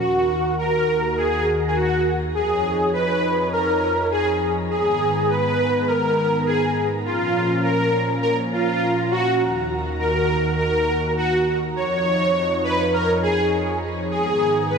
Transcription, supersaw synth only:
0.00 0.54 F#4 loud
0.58 1.19 A#4 loud
1.17 1.67 G#4 loud
1.69 1.76 G#4 medium
1.75 2.17 F#4 loud
2.34 2.89 G#4 loud
2.93 3.48 B4 loud
3.52 4.07 A#4 loud
4.11 4.52 G#4 loud
4.70 5.31 G#4 loud
5.29 5.90 B4 loud
5.88 6.48 A#4 loud
6.46 6.87 G#4 loud
7.05 7.66 F4 loud
7.64 8.22 A#4 loud
8.23 8.36 A#4 loud
8.52 9.13 F4 medium
9.11 9.66 F#4 medium
9.99 10.57 A#4 loud
10.58 11.13 A#4 loud
11.17 11.58 F#4 loud
11.76 12.67 C#5 loud
12.64 12.94 B4 loud
12.93 13.21 A#4 loud
13.23 13.78 G#4 medium
14.11 14.71 G#4 medium
14.69 14.78 B4 loud

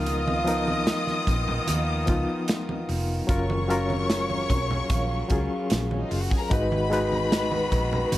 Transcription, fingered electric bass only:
0.00 0.90 C#2 loud
1.28 1.59 A#1 medium
1.69 2.10 D#2 medium
2.09 2.24 C#2 medium
2.89 3.20 F1 medium
3.29 4.46 F#1 loud
4.50 4.81 B1 medium
4.90 5.21 A#1 loud
5.31 5.46 C#2 medium
5.72 6.02 A#1 medium
6.12 6.27 F#1 medium
6.51 7.68 G#1 medium
7.73 8.03 A#1 medium
8.13 8.18 G#1 medium

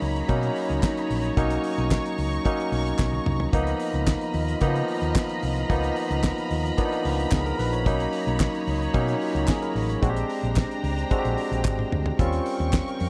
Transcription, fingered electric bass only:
0.02 0.21 C#2 medium
0.29 0.48 B2 loud
0.70 0.79 C#2 medium
1.10 1.29 A#1 medium
1.37 1.56 B1 loud
1.78 1.97 B1 loud
2.18 2.37 C#2 medium
2.72 2.91 B1 medium
2.99 3.18 B1 medium
3.26 3.45 C2 loud
3.53 3.72 C#2 medium
3.94 4.13 C#2 medium
4.34 4.53 D#2 loud
4.62 4.81 C#3 loud
5.02 5.11 D#2 medium
5.43 5.62 C2 loud
5.70 5.89 C#2 loud
6.10 6.29 C#2 loud
6.51 6.70 D#2 medium
7.05 7.24 C#2 medium
7.32 7.51 C#2 medium
7.59 7.86 A#1 medium
7.86 8.05 B1 medium
8.27 8.46 B1 loud
8.67 8.86 C#2 medium
8.94 9.14 B2 loud
9.35 9.44 C#2 medium
9.75 9.94 A1 medium
10.03 10.22 A#1 loud
10.43 10.62 A#1 loud
10.84 11.03 C#2 loud
11.25 11.34 A#1 medium
11.51 11.65 A#1 medium
11.65 11.84 G#1 medium
11.92 12.11 D2 medium
12.19 12.38 D#2 loud
12.60 12.79 D#2 loud
13.01 13.09 F2 loud

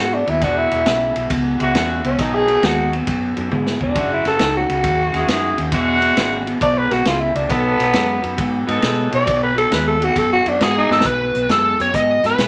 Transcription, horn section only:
0.41 0.97 G#3 medium
0.41 0.98 D4 medium
0.41 0.98 E4 medium
0.41 0.98 F#4 loud
1.59 2.09 G#3 medium
1.59 2.10 D4 medium
1.59 2.10 E4 medium
1.59 2.10 F#4 loud
2.17 2.95 A3 medium
2.17 2.95 B3 medium
2.17 2.96 C#4 medium
2.17 2.96 D#4 loud
3.94 4.51 G#3 medium
3.94 4.51 A#3 medium
3.94 4.52 E4 medium
3.94 4.52 F#4 medium
5.13 5.63 G#3 medium
5.13 5.64 A#3 medium
5.13 5.64 E4 medium
5.13 5.64 G#4 medium
5.71 6.49 G#3 loud
5.71 6.49 D4 loud
5.71 6.50 E4 loud
5.71 6.50 F#4 loud
7.48 8.05 B3 loud
7.48 8.06 C#4 medium
7.48 8.06 D#4 medium
7.48 8.06 A4 loud
8.67 9.17 B3 loud
8.67 9.18 C#4 medium
8.67 9.18 D#4 medium
8.67 9.19 A4 loud

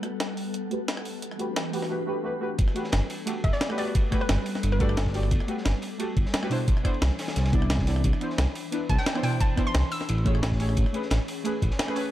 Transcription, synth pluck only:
3.44 3.51 E5 medium
3.53 3.73 D5 medium
3.78 3.99 D5 medium
4.21 4.46 B4 medium
4.72 4.79 B4 medium
4.81 5.15 A4 medium
8.90 8.97 A5 medium
8.98 9.19 G5 medium
9.24 9.44 G5 medium
9.41 9.61 A5 medium
9.67 9.87 C6 medium
9.92 10.12 E6 medium

